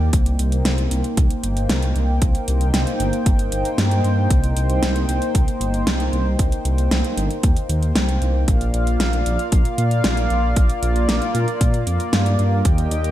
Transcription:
Already playing: A#3 D5
0.13 C2 D#4 C5 G5, kick, closed hi-hat
0.26 closed hi-hat
0.39 C2, closed hi-hat
0.52 closed hi-hat
0.65 C2, snare, closed hi-hat
0.78 closed hi-hat
0.91 C2, closed hi-hat
1.04 closed hi-hat
1.17 C2, kick, closed hi-hat
1.30 closed hi-hat
1.44 G1, closed hi-hat
1.57 closed hi-hat
1.69 C2, snare, closed hi-hat
1.82 closed hi-hat
1.96 C2, closed hi-hat
2.22 C2, kick, closed hi-hat
2.35 closed hi-hat
2.48 C2, closed hi-hat
2.61 closed hi-hat
2.74 C2, snare, closed hi-hat
2.87 closed hi-hat
3.00 G1, closed hi-hat
3.13 closed hi-hat
3.26 G1, kick, closed hi-hat
3.39 closed hi-hat
3.52 G1, closed hi-hat
3.65 closed hi-hat
3.78 G2, snare, closed hi-hat
3.91 closed hi-hat
4.04 G2, closed hi-hat
4.31 C2, kick, closed hi-hat
4.44 closed hi-hat
4.56 C2, closed hi-hat
4.70 closed hi-hat
4.82 C2, snare, closed hi-hat
4.96 closed hi-hat
5.08 C2, closed hi-hat
5.22 closed hi-hat
5.35 C2, kick, closed hi-hat
5.48 closed hi-hat
5.61 G1, closed hi-hat
5.74 closed hi-hat
5.87 C2, snare, closed hi-hat
6.00 closed hi-hat
6.13 C2, closed hi-hat
6.39 C2, kick, closed hi-hat
6.52 closed hi-hat
6.65 C2, closed hi-hat
6.78 closed hi-hat
6.91 C2, snare, closed hi-hat
7.04 closed hi-hat
7.17 G1, closed hi-hat
7.31 closed hi-hat
7.43 D#2, kick, closed hi-hat
7.57 closed hi-hat
7.69 D#2, closed hi-hat
7.83 closed hi-hat
7.96 C2, snare, closed hi-hat
8.09 closed hi-hat
8.22 C2, closed hi-hat
8.48 A#1 A#3 F4 D5 F5, kick, closed hi-hat
8.61 closed hi-hat
8.74 A#1, closed hi-hat
8.87 closed hi-hat
9.00 A#1, snare, closed hi-hat
9.13 closed hi-hat
9.26 A#1, closed hi-hat
9.39 closed hi-hat
9.52 A#1, kick, closed hi-hat
9.65 closed hi-hat
9.78 A#2, closed hi-hat
9.91 closed hi-hat
10.04 A#1, snare, closed hi-hat
10.17 closed hi-hat
10.30 A#1, closed hi-hat
10.56 A#1, kick, closed hi-hat
10.70 closed hi-hat
10.83 A#1, closed hi-hat
10.96 closed hi-hat
11.09 A#1, snare, closed hi-hat
11.22 closed hi-hat
11.35 A#2, closed hi-hat
11.48 closed hi-hat
11.61 A#2, kick, closed hi-hat
11.74 closed hi-hat
11.87 F2, closed hi-hat
12.00 closed hi-hat
12.13 G2, snare, closed hi-hat
12.26 closed hi-hat
12.39 G2, closed hi-hat
12.65 D#2 G4 D#5 G5, kick, closed hi-hat
12.78 closed hi-hat
12.91 D#2, closed hi-hat
13.04 closed hi-hat

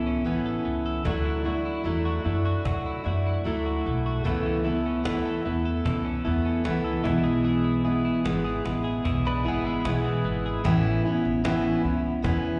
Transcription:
Already playing: C#2 E3 B3 C#4 E4 A4
0.06 C#4
0.24 A1 E3 B3 C#4 E4
0.46 A4
0.65 C#2 B3
0.86 A4
1.04 D2 D3 F#3 A3 D4 E4 F#4, cajon bass
1.26 E4
1.44 A3 D4 E4 F#4
1.65 E4
1.84 E2 F#3 A3 D4 E4
2.05 F#4
2.24 F#2 A3 D4 E4
2.45 F#4
2.65 D2 F#3 F#4, cajon bass
2.86 E4
3.04 F#2 A3 D4 E4 F#4
3.26 E4
3.44 D2 F#3 A3 D4 E4
3.66 F#4
3.86 B1 A3
4.06 F#4
4.24 C#2 C#3 E3 A3 B3 E4 A4, cajon bass
4.45 C#4
4.64 A3 B3 E4 A4
4.86 C#4
5.04 D2 E3 A3 B3 E4, cajon slap
5.26 A4
5.45 E2 A3 B3 E4
5.65 A4
5.85 C#2 E3 A4, cajon bass
6.05 C#4
6.24 E2 A3 B3 E4 A4
6.45 C#4
6.64 C#2 E3 A3 B3 E4, cajon slap
6.84 A4
7.04 B1 B2 E3 G#3 B3 E4, cajon bass
7.24 G#4
7.44 E3 G#4
7.64 E4
7.84 G#3 B3 E4 G#4
8.05 E4
8.24 G#1 E3 G#3 B3 E4, cajon slap
8.45 G#4
8.65 A1 G#3 B3 E4, cajon slap
8.84 G#4
9.05 B1 E3 G#4, cajon bass
9.25 D4 E4 B4
9.44 G#1 G#3 B3 E4 G#4
9.65 G#3 E4
9.84 B1 E3 G#3 B3 E4, cajon slap
10.05 G#4
10.24 G#1 B3
10.46 G#4
10.64 A1 A2 E3 B3 C#4 E4, cajon bass
11.05 B3 C#4 E4
11.25 A1
11.44 A2 E3 B3 C#4 E4, cajon slap
11.84 C#2 B3 C#4 E4
12.22 E2 E3 B3 C#4 E4, cajon bass

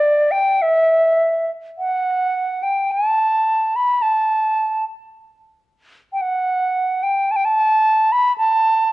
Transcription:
Already playing: D5
0.31 G5
0.62 E5
1.78 F#5
2.63 G5
2.91 A5
3.76 B5
4.02 A5
6.13 G5
6.21 F#5
7.03 G5
7.31 A5
7.36 G5
7.45 A5
8.12 B5
8.38 A5

